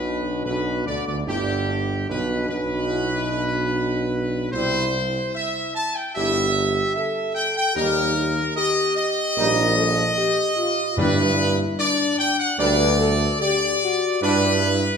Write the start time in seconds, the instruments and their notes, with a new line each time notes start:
Already playing: tuba B1, trombone section B2, trumpet section B4
0.04 french horn section D4
0.44 tuba B1, trombone section B2, trumpet section B4
0.86 tuba D2, trombone section D3, trumpet section D5
1.07 tuba D2, trombone section D3, trumpet section D5
1.26 tuba G1, trombone section G2, french horn section E4, trumpet section G4
1.67 french horn section D4
2.09 tuba B1, trombone section B2, trumpet section B4
2.48 tuba B1, trombone section B2, trumpet section B4
2.90 french horn section E4
3.30 french horn section D4
4.52 tuba C2, trombone section G3 E4, french horn section E4, trumpet section C5
5.35 trumpet section E5
5.75 trumpet section A5
5.95 trumpet section G5
6.15 tuba G1, trombone section G3 E4, french horn section G4, trumpet section E5
6.94 french horn section A4, trumpet section E5
7.35 trumpet section G5
7.56 trumpet section G5
7.75 tuba D#2, trombone section G3 D#4, french horn section G4, trumpet section A#4
8.16 french horn section D#4
8.55 french horn section G4, trumpet section D#5
8.96 trumpet section D#5
9.37 tuba A#1, trombone section G3 D#4, french horn section A#4
9.76 french horn section A4
10.16 french horn section G4
10.56 french horn section F4
10.96 timpani G2, tuba G2, trombone section G3 D4, french horn section E4, trumpet section B4
11.77 french horn section D4, trumpet section D5
12.18 trumpet section G5
12.39 trumpet section F#5
12.58 tuba D2, trombone section G3 D4, french horn section B4, trumpet section D5
12.99 french horn section A4
13.40 french horn section G4, trumpet section D5
13.82 french horn section F#4
14.21 tuba G2, trombone section G3 D4, french horn section E4, trumpet section B4